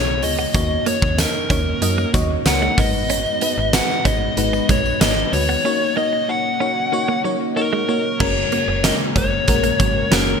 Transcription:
Already playing: B1 C#3 G#3 B3 F4 G#4 B4 C#5
0.07 muted clean electric guitar stroke
0.22 D2 B3 F4 G#4 C#5 D#5, open hi-hat, tambourine
0.39 B3
0.54 D#2 A#3 C#4 D#4 F#4 C#5 D#5, kick, closed hi-hat, tambourine
0.86 A#3 D#4 F#4 C#5 D#5, closed hi-hat, tambourine
1.02 D#2, muted clean electric guitar stroke, kick
1.17 A#3 D#4 F#4 A#4 C#5, snare, closed hi-hat, tambourine
1.35 tambourine
1.49 D#2 A#3 C#4 D#4 F#4 C#5, kick, closed hi-hat, tambourine
1.81 F#2 A#3 D#4 F#4 D#5, muted clean electric guitar stroke, closed hi-hat, tambourine
1.98 A#3, tambourine
2.13 D#2 F#3 A#3 D#4 F#4 C#5, kick, closed hi-hat, tambourine
2.45 C#2 A#3 D#4 F#4 A#4 F#5, muted clean electric guitar stroke, snare, closed hi-hat, tambourine
2.62 G#3
2.77 G#1 G#3 A#3 B3 D#4 F#4 B4 D#5, kick, open hi-hat, tambourine
3.10 C#4, closed hi-hat, tambourine
3.26 tambourine
3.41 G#3 B3 D#4 F#4 B4, closed hi-hat, tambourine
3.58 G#1, muted clean electric guitar stroke
3.73 G#3 D#4 F#4 B4 F#5, snare, closed hi-hat, tambourine
3.90 tambourine
4.05 G#1 G#3 C#4 D#4 F#4 B4 D#5, kick, closed hi-hat, tambourine
4.37 G#1 G#3 D#4 F#4 B4, muted clean electric guitar stroke, closed hi-hat, tambourine
4.53 B3, tambourine
4.69 A#1 G#3 D#4 F#4 B4 C#5, kick, closed hi-hat, tambourine
4.86 tambourine
5.01 G#1 G#3 A#3 D#4 F#4 B4 D#5, snare, closed hi-hat, tambourine
5.17 muted clean electric guitar stroke
5.33 D2 G#3 D#4 F#4 B4 C#5, open hi-hat, tambourine
5.49 B3
5.64 A#3 C#4 D#4 F#4 C#5
5.96 A#3 D#4 F#4 D#5
6.13 muted clean electric guitar stroke
6.28 A#3 D#4 F#4 C#5 F#5
6.60 A#3 C#4 D#4 F#4 C#5
6.92 A#3 D#4 F#4 C#5, muted clean electric guitar stroke
7.08 A#3
7.24 F#3 A#3 D#4 F#4 C#5
7.56 A#3 D#4 F#4 A#4 C#5, muted clean electric guitar stroke
7.73 G#3
7.88 A#3 D#4 F#4 C#5
8.20 F#1 C#3 G#3 A#3 C#4 F#4 A#4 C#5, kick, crash
8.52 G#3 A#3 C#4 F#4 A#4, closed hi-hat
8.68 F#1 C#5, muted clean electric guitar stroke
8.84 G#3 A#3 C#4 F#4 A#4 D#5, snare, closed hi-hat, tambourine
9.15 F#1 G#3 A#3 C#4 F#4 A#4 C#5, kick, closed hi-hat
9.48 A#1 G#3 A#3 C#4 F#4 A#4, muted clean electric guitar stroke, kick, closed hi-hat
9.64 A#3, closed hi-hat
9.79 G#1 F#3 G#3 A#3 C#4 F#4 C#5, kick, closed hi-hat
10.11 F#1 G#3 A#3 C#4 F#4 A#4, snare, closed hi-hat, tambourine
10.27 muted clean electric guitar stroke

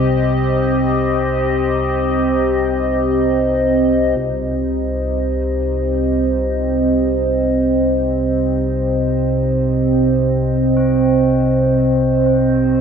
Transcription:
Already playing: C2 C3 C4 G4 C5 D#5
4.17 C2 C3 F4
10.77 C4

